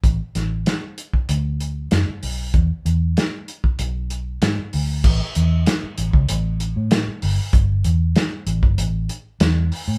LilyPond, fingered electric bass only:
\new Staff \with { instrumentName = "Fingered electric bass" } { \clef bass \time 4/4 \key e \mixolydian \tempo 4 = 96 a,,16 r16 a,,8 r4 d,4 fis,16 r16 b,,8 | e,16 r16 e,8 r4 b,,4 gis,16 r16 d,8 | \key a \mixolydian a,,16 r16 e,8 r8 a,,16 cis,16 a,,8. a,8 r16 g,,16 r16 | g,,8 e,8 r8 a,,16 g,,16 a,,8 r8 e,8 r16 a,16 | }